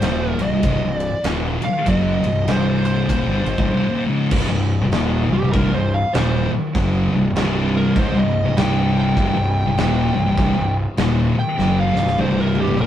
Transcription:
Already playing: lead electric guitar C5
0.01 fingered electric bass D#1, distorted electric guitar D#2 A#2 D#3, snare, ride
0.31 lead electric guitar A#4
0.37 fingered electric bass C1, distorted electric guitar C2 G2, ride
0.43 lead electric guitar D#5
0.50 fingered electric bass C1, distorted electric guitar C2 G2
0.63 fingered electric bass C1, distorted electric guitar C2 G2, kick, ride
0.81 fingered electric bass C1, distorted electric guitar C2 G2
0.97 lead electric guitar D5, ride
1.24 fingered electric bass D#1, distorted electric guitar D#2 A#2 D#3, snare, ride
1.62 lead electric guitar F5, muted fingered electric bass stroke, muted distorted electric guitar stroke, ride
1.86 fingered electric bass F#1, distorted electric guitar F#2 C#3 F#3, lead electric guitar D#5, kick, ride
2.22 fingered electric bass C1, distorted electric guitar C2 G2, ride
2.47 fingered electric bass C1, distorted electric guitar C2 G2 C3, lead electric guitar C5, snare, ride
2.85 lead electric guitar C5, ride
3.09 fingered electric bass D#1, distorted electric guitar D#2 A#2, kick, ride
3.27 fingered electric bass G1, distorted electric guitar G2 D3
3.45 fingered electric bass G#1, distorted electric guitar G#2 D#3, ride
3.58 fingered electric bass C#1, distorted electric guitar C#2 G#2, kick, snare
3.70 distorted electric guitar C2 G2
3.88 distorted electric guitar D#2 A#2
4.08 distorted electric guitar C#2 G#2 C#3
4.31 fingered electric bass C1, distorted electric guitar C2 G2, kick, crash
4.48 fingered electric bass C1, distorted electric guitar C2 G2
4.81 fingered electric bass C1, distorted electric guitar C2 G2
4.91 fingered electric bass D#1, distorted electric guitar D#2 A#2 D#3, snare, crash
5.29 fingered electric bass C1, distorted electric guitar C2 G2
5.33 lead electric guitar G4
5.41 fingered electric bass C1, distorted electric guitar C2 G2
5.53 fingered electric bass C1, distorted electric guitar C2 G2, lead electric guitar A#4, kick, crash
5.71 fingered electric bass C1, distorted electric guitar C2 G2, lead electric guitar C5
5.94 lead electric guitar F5
6.13 fingered electric bass D#1, distorted electric guitar D#2 A#2 D#3, lead electric guitar C5, snare, crash
6.51 muted fingered electric bass stroke, muted distorted electric guitar stroke
6.75 fingered electric bass F#1, distorted electric guitar F#2 C#3 F#3, kick, crash
7.11 fingered electric bass C1, distorted electric guitar C2 G2
7.34 fingered electric bass C1, distorted electric guitar C2 G2 C3, snare, crash
7.77 lead electric guitar A#4
7.96 fingered electric bass C#1, distorted electric guitar C#2 G#2, lead electric guitar C5, kick, crash
8.13 fingered electric bass C1, distorted electric guitar C2 G2
8.19 lead electric guitar D#5
8.44 fingered electric bass C1, distorted electric guitar C2 G2
8.56 fingered electric bass C1, distorted electric guitar C2 G2 C3, lead electric guitar G5, snare, crash
8.99 lead electric guitar G5
9.16 fingered electric bass C1, distorted electric guitar C2 G2, kick, crash
9.35 fingered electric bass C1, distorted electric guitar C2 G2
9.67 fingered electric bass C1, distorted electric guitar C2 G2
9.78 fingered electric bass D#1, distorted electric guitar D#2 A#2 D#3, snare, crash
10.15 fingered electric bass C1, distorted electric guitar C2 G2
10.27 fingered electric bass C1, distorted electric guitar C2 G2
10.37 fingered electric bass C1, distorted electric guitar C2 G2, kick, crash
10.57 fingered electric bass C1, distorted electric guitar C2 G2
10.97 fingered electric bass D#1, distorted electric guitar D#2 A#2 D#3, snare, crash
11.35 lead electric guitar G5, muted distorted electric guitar stroke, muted fingered electric bass stroke
11.58 fingered electric bass F#1, distorted electric guitar F#2 C#3 F#3, snare
11.80 lead electric guitar F5
11.94 fingered electric bass C1, distorted electric guitar C2 G2, snare
12.07 snare
12.18 fingered electric bass C1, distorted electric guitar C2 G2 C3, lead electric guitar C5, high tom
12.40 lead electric guitar A#4
12.55 high tom
12.60 lead electric guitar G4
12.67 mid tom
12.78 fingered electric bass D#1, distorted electric guitar D#2 A#2, lead electric guitar A#4, mid tom

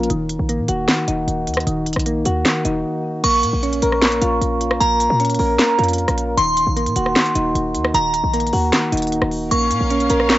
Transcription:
Already playing: tine electric piano F3 A#3 C#4 F4
0.03 closed hi-hat
0.10 808-style bass D#1, synth keys D#3, closed hi-hat
0.29 closed hi-hat
0.39 808-style bass A#1
0.49 synth keys A#3, closed hi-hat
0.59 808-style bass A#2
0.68 808-style bass D#1, synth keys F#4, closed hi-hat
0.88 synth keys D#3, snare, clap, closed hi-hat
1.08 808-style bass D#1, synth keys D#4, closed hi-hat
1.28 808-style bass D#1, closed hi-hat
1.47 808-style bass D#2, closed hi-hat
1.54 cross-stick, closed hi-hat
1.60 closed hi-hat
1.67 808-style bass D#1, synth keys D#3, closed hi-hat
1.86 closed hi-hat, open hi-hat
1.93 808-style bass A#1, cross-stick, closed hi-hat
1.99 closed hi-hat
2.06 synth keys A#3, closed hi-hat
2.25 808-style bass D#2, synth keys F#4, closed hi-hat
2.45 synth keys D#3, snare, clap, closed hi-hat
2.65 808-style bass D#1, synth keys D#4, closed hi-hat
3.24 808-style bass A#1, synth keys A#3, synth bell C#6, closed hi-hat, crash
3.43 808-style bass A#2, closed hi-hat
3.53 808-style bass A#1
3.63 synth keys C#4, closed hi-hat
3.73 closed hi-hat
3.82 808-style bass A#1, synth keys A#4, closed hi-hat
3.92 cross-stick
4.02 synth keys A#3, snare, clap, closed hi-hat
4.12 closed hi-hat
4.22 808-style bass A#1, synth keys F4, closed hi-hat
4.41 808-style bass A#1, closed hi-hat
4.61 closed hi-hat
4.71 cross-stick
4.80 808-style bass A#1, synth keys A#3, synth bell A#5, closed hi-hat
5.00 closed hi-hat
5.10 808-style bass A#2
5.20 synth keys C#4, closed hi-hat
5.25 closed hi-hat
5.30 closed hi-hat
5.34 closed hi-hat
5.39 808-style bass A#1, synth keys A#4, open hi-hat
5.59 synth keys A#3, snare, clap, closed hi-hat
5.79 808-style bass F2, synth keys F4, closed hi-hat
5.83 closed hi-hat
5.88 closed hi-hat
5.93 closed hi-hat
5.98 closed hi-hat
6.08 808-style bass A#1, cross-stick, closed hi-hat
6.18 closed hi-hat
6.37 808-style bass D#1, synth keys D#3, synth bell C6, closed hi-hat
6.57 closed hi-hat
6.67 808-style bass A#1
6.77 synth keys A#3, closed hi-hat
6.86 808-style bass A#2, closed hi-hat
6.96 808-style bass D#1, synth keys F#4, closed hi-hat
7.06 cross-stick
7.16 synth keys D#3, snare, clap, closed hi-hat
7.26 closed hi-hat
7.35 808-style bass D#1, synth keys D#4, closed hi-hat
7.55 808-style bass D#1, closed hi-hat
7.75 808-style bass D#2, closed hi-hat
7.85 cross-stick
7.94 808-style bass D#1, synth keys D#3, synth bell A#5, closed hi-hat
8.14 closed hi-hat
8.24 808-style bass A#1
8.33 synth keys A#3, closed hi-hat
8.40 closed hi-hat
8.47 closed hi-hat
8.53 808-style bass D#2, synth keys F#4, open hi-hat
8.73 synth keys D#3, snare, clap, closed hi-hat
8.92 808-style bass D#1, synth keys D#4, closed hi-hat
8.97 closed hi-hat
9.02 closed hi-hat
9.07 closed hi-hat
9.12 closed hi-hat
9.22 808-style bass D#1, cross-stick
9.31 open hi-hat
9.51 808-style bass A#1, synth keys A#3, string section C#4 A#4 F5, synth bell C#6, closed hi-hat
9.71 808-style bass A#2, closed hi-hat
9.81 808-style bass A#1
9.90 synth keys C#4, closed hi-hat
10.00 closed hi-hat
10.10 808-style bass A#1, synth keys A#4, closed hi-hat
10.20 cross-stick
10.30 synth keys A#3, snare, clap, closed hi-hat

